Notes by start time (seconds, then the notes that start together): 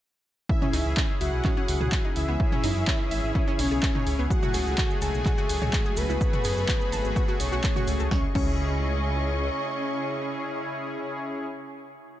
0.49 C#3 C#4 E4 G#4 E5, kick
0.62 C#4, mid tom
0.73 C#2 D#4, open hi-hat
0.81 C#5
0.86 C#2
0.97 C#4 G#5, kick, clap
1.21 C#2 C#4 E4 F#4 G#4 E5 F#5, open hi-hat
1.33 B1
1.45 C#4, kick, clap, mid tom
1.57 C#4
1.68 C#2, open hi-hat
1.81 C#2 G#4, mid tom
1.92 kick, clap
2.05 D#4
2.16 C#2 E4 E5, open hi-hat
2.28 C#2 B3
2.40 C#4 E4 G#4, kick
2.52 C#4, mid tom
2.64 F#2 D#4, open hi-hat
2.76 F#2
2.87 C#4, kick, clap
3.11 G#1 C#4 E4 G#4 E5, open hi-hat
3.24 G#1
3.35 C#4, kick
3.48 C#4
3.59 B1 C#4 C#5, open hi-hat
3.71 B1 G#4
3.83 kick, clap
3.95 D#4, mid tom
4.07 C#2, open hi-hat
4.19 C#2 B3
4.30 F#3 A3 C#4 F#4 G#4 F#5, kick, cabasa
4.43 F#4, mid tom, cabasa
4.50 C#2 A3 G#4, open hi-hat, cabasa
4.67 C#2, cabasa
4.78 F#4, kick, clap, cabasa
4.91 cabasa
5.02 C#2 A3 F#4 G#4 G#5 A5, open hi-hat, cabasa
5.14 B1, cabasa
5.26 F#4, kick, clap, mid tom, cabasa
5.38 F#4, cabasa
5.49 C#2, open hi-hat, cabasa
5.62 C#2 C#5, mid tom, cabasa
5.73 kick, clap, cabasa
5.86 G#4, cabasa
5.97 C#2 B4 B5, open hi-hat, cabasa
6.09 C#2 E4, cabasa
6.21 A3 F#4 G#4, kick, cabasa
6.33 F#4, mid tom, cabasa
6.44 F#2 G#4, open hi-hat, cabasa
6.57 F#2, cabasa
6.68 F#4, kick, clap, cabasa
6.81 cabasa
6.92 G#1 A3 F#4 G#4 A5, open hi-hat, cabasa
7.05 G#1, cabasa
7.16 F#4, kick, cabasa
7.28 F#4, cabasa
7.40 B1 C#5 C#6, open hi-hat, cabasa
7.52 B1 F#4, cabasa
7.64 kick, clap, cabasa
7.76 F#4, mid tom, cabasa
7.87 C#2, open hi-hat, cabasa
8.00 C#2 A4, cabasa
8.11 C#2 C#3 C#4 E4 G#4 C#5 D#5 C#6, kick, snare
8.19 C#5
8.26 G#5
8.35 C#2 C#4 E4 G#4 C#5 C#6, kick, crash